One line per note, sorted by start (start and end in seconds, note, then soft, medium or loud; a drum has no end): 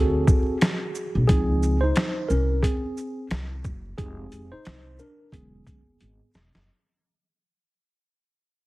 0.00 0.24 D2 medium
0.00 0.58 C4 medium
0.00 1.25 F#4 medium
0.00 1.24 G#4 soft
0.00 0.57 A4 medium
0.27 kick medium
0.27 shaker soft
0.61 snare loud
0.61 closed hi-hat medium
0.95 shaker soft
1.15 1.27 B1 medium
1.28 1.89 C#2 medium
1.28 1.75 F3 soft
1.28 1.79 C4 medium
1.28 1.76 D#4 medium
1.28 1.83 G#4 medium
1.28 kick loud
1.28 closed hi-hat medium
1.63 shaker soft
1.81 2.27 D#4 medium
1.81 2.31 C5 medium
1.96 snare loud
1.96 closed hi-hat medium
2.29 2.60 C2 medium
2.29 2.62 C#4 medium
2.29 2.64 A#4 medium
2.29 shaker soft
2.62 3.27 C4 medium
2.62 3.26 G#4 medium
2.62 kick medium
2.62 closed hi-hat medium
2.97 shaker soft
3.31 3.61 C2 medium
3.31 snare loud
3.31 closed hi-hat medium
3.64 3.95 F#1 medium
3.64 kick medium
3.64 shaker soft
3.98 4.29 F1 loud
3.98 4.46 G#3 soft
3.98 4.49 C4 medium
3.98 4.46 D#4 soft
3.98 4.45 G4 medium
3.98 4.53 G#4 medium
3.98 kick loud
3.98 closed hi-hat medium
4.32 4.50 F1 medium
4.32 closed hi-hat soft
4.32 shaker soft
4.52 4.97 D#4 medium
4.52 5.01 C5 medium
4.65 4.96 C2 medium
4.65 snare loud
4.65 closed hi-hat medium
4.99 5.31 D4 medium
4.99 5.34 A#4 medium
4.99 shaker soft
5.32 5.63 E1 medium
5.32 5.80 D3 soft
5.32 5.80 F#3 soft
5.32 5.80 G#3 soft
5.32 6.31 B3 medium
5.32 5.80 C#4 medium
5.32 6.30 G#4 medium
5.32 kick medium
5.32 closed hi-hat medium
5.66 5.97 F#1 medium
5.66 kick medium
5.66 closed hi-hat soft
5.66 shaker soft
6.01 6.19 G#1 medium
6.01 closed hi-hat medium
6.34 6.52 E1 medium
6.34 snare medium
6.34 shaker soft
6.54 6.67 F#1 medium
6.54 snare medium